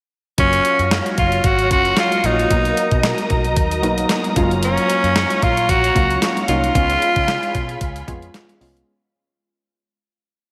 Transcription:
0.38 F#1 F#3 A#3 C#4 F4 C#5 F5 A#5, kick, closed hi-hat
0.53 closed hi-hat
0.65 closed hi-hat
0.79 F#2, closed hi-hat
0.91 snare, closed hi-hat
1.06 closed hi-hat
1.18 F#1 F4, kick, closed hi-hat
1.32 closed hi-hat
1.44 G#1 F#4, kick, closed hi-hat
1.59 closed hi-hat
1.70 F#1 F#3 A#3 C#4 F4 F#4, kick, closed hi-hat
1.85 closed hi-hat
1.97 F4, snare, closed hi-hat
2.12 closed hi-hat
2.24 A#1 F#3 A#3 C#4 D#4 F4, closed hi-hat
2.39 closed hi-hat
2.50 B1 F#3 A#3 B3 D#4 A#4 D#5, kick, closed hi-hat
2.65 closed hi-hat
2.77 closed hi-hat
2.91 B2, kick, closed hi-hat
3.03 snare, closed hi-hat
3.18 closed hi-hat
3.30 B1, kick, closed hi-hat
3.44 closed hi-hat
3.56 D#2, kick, closed hi-hat
3.71 closed hi-hat
3.82 B1 F#3 A#3 B3 D#4, closed hi-hat
3.98 closed hi-hat
4.09 snare, closed hi-hat
4.24 closed hi-hat
4.36 F#1 F#3 G#3 C#4 F4 C#5 F5, kick, closed hi-hat
4.43 A#3
4.51 closed hi-hat
4.63 C#4, closed hi-hat
4.78 closed hi-hat
4.90 closed hi-hat
5.04 F#2, closed hi-hat
5.16 snare, closed hi-hat
5.30 closed hi-hat
5.42 A#2 F4, kick, closed hi-hat
5.57 closed hi-hat
5.69 A#1 F#4, kick, closed hi-hat
5.84 closed hi-hat
5.95 C#2 F#3 A#3 C#4 F4, kick, closed hi-hat
6.10 closed hi-hat
6.22 snare, closed hi-hat
6.37 closed hi-hat
6.48 C2 F#3 A#3 C#4 D#4 F4, closed hi-hat
6.64 closed hi-hat
6.74 C#2 G#3 B3 C#4 F4 G#4 B5, kick, closed hi-hat
6.90 closed hi-hat
7.02 closed hi-hat
7.16 C#3, kick, closed hi-hat
7.28 snare, closed hi-hat
7.43 closed hi-hat
7.55 B2, kick, closed hi-hat
7.69 closed hi-hat
7.81 C#2, kick, closed hi-hat
7.96 closed hi-hat
8.07 F2 G#3 B3 C#4 F4, kick, closed hi-hat
8.22 closed hi-hat
8.34 snare, closed hi-hat
8.49 closed hi-hat
8.60 C2 G#3 B3 C#4 F4, open hi-hat
8.77 closed hi-hat

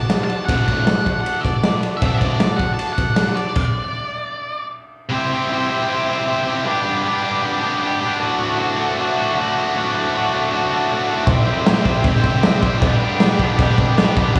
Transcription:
Already playing: F#4 A4 D5 A5
0.10 snare, ride
0.24 A5
0.29 ride
0.45 D2 F#5, kick, ride
0.50 A2 D3
0.68 D2 A2 D3, kick, ride
0.87 snare, ride
1.06 kick, ride
1.20 F#5
1.26 ride
1.41 D5, kick
1.46 ride
1.63 snare, ride
1.83 ride
1.97 F#4 A4 D5 E5
2.02 D2 A2 D3, kick, ride
2.18 D2 D5, kick, ride
2.22 A2 D3
2.40 snare, ride
2.56 F#5, kick, ride
2.74 A5
2.79 ride
2.93 F#5
2.98 kick, ride
3.16 snare, ride
3.27 snare
3.36 D5, ride
3.55 kick, crash
5.09 C3 G3 C4 E4 G4 C5 E5
5.14 C5
5.30 E4 G4 C5
5.35 C4
5.50 C4 E4 G4
5.54 C5
5.69 G3 C4 E4 G4 C5
5.74 C3
5.89 C4 E4 G4
5.94 C5
6.08 G3 C4 E4 G4 C5
6.13 C3
6.26 C4 E4 G4
6.31 C5
6.46 E4 G4 C5
6.50 C4
6.64 G2 D3 G3 B3 D4 G4 B4 D5
6.69 G4
6.84 B3 D4 G4
6.88 G3
7.03 G3 B3 D4
7.08 G4
7.23 D3 G3 B3 D4 G4
7.27 G2
7.41 G3 B3 D4
7.46 G4
7.60 G3 B3 D4 G4 A5
7.64 G2 D3
7.80 G3 B3 D4 G5
7.86 G4
8.00 B3 D4 G4
8.05 G3 F#5
8.19 D2 A2 D3 F#4 A4 D5
8.24 A3 F#4
8.39 A3 F#4
8.44 D3
8.57 A2 D3 A3 F#4
8.76 D3 A3 F#4
8.81 D2 A2
8.97 A2 D3 A3
9.01 F#4
9.17 D3 A3 F#4
9.21 D2 A2
9.36 A2 D3 A3
9.41 F#4
9.55 A3 F#4
9.60 D3
9.74 D2 A2 D3 A3
9.78 F#4
9.93 A3 F#4
9.98 D3
10.12 A2 D3 A3
10.17 F#4
10.31 A2 D3 A3 F#4
10.36 D2
10.51 A2 D3 A3
10.56 F#4
10.70 A2 D3 A3 F#4
10.75 D2
10.89 A2 D3 A3
10.94 F#4
11.07 A3 F#4
11.11 D3
11.25 C3 G4 C5 E5, kick, crash
11.29 G3 C4 E4 G4 C5
11.46 E4 G4 C5
11.51 C4
11.66 C4 E4 G4, snare, crash
11.71 C5
11.84 G3 C4 E4 G4 C5, kick
11.90 C3
12.04 C4 E4, kick, crash
12.08 G4 C5
12.14 snare
12.23 G3 C4 E4 G4 C5, kick, snare
12.27 C3
12.43 C4 E4, snare, crash
12.48 G4 C5
12.62 E4 G4 C5, kick
12.68 C4
12.81 G2 D3 G3 G4 B4 D5, kick, crash
12.85 B3 D4 G4
13.02 B3 D4 G4
13.07 G3
13.20 G3 B3, snare, crash
13.25 D4 G4
13.39 B3 D4 G4, kick
13.44 G2 D3 G3
13.58 G3 B3 D4, kick, crash
13.62 G4
13.70 snare
13.78 D3 G3 B3 D4 G4, kick
13.83 G2
13.97 G3 B3 D4, snare, crash
14.01 G4
14.15 D4 G4, kick
14.19 G3 B3
14.33 D2 A2 D3 F#4 A4 D5, kick, crash

